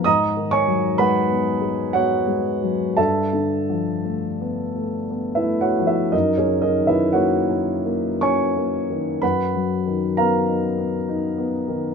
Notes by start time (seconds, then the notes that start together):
0.04 G#2 D#5 A#5 D#6
0.37 D#3
0.51 C#5 G#5 C#6
0.67 F#3
0.98 G#3 B4 F#5 B5
1.29 B3
1.62 G#3
1.93 B3 F#4 C#5 F#5
2.27 G#3
2.62 F#3
2.97 G2 A4 E5 A5
3.33 D3
3.70 F3
4.05 A3
4.41 B3
4.76 A3
5.11 B3
5.35 E4 B4 E5
5.44 A3
5.61 F#4 C#5 F#5
5.79 F3
5.87 E4 B4 E5
6.12 F#2 D#4 A#4 D#5
6.37 C#4 G#4 C#5
6.46 C#3
6.62 D#4 A#4 D#5
6.80 D#3
6.87 E4 B4 E5
7.13 A#3 F#4 C#5 F#5
7.49 C#4
7.85 A#3
8.21 C#4 C#5 G#5 C#6
8.57 A#3
8.90 D#3
9.22 F#2 B4 F#5 B5
9.55 F#3
9.86 D#3
10.17 B3 A#4 F5 A#5
10.48 D#4
10.78 B3
11.09 D#4
11.38 B3
11.68 D#3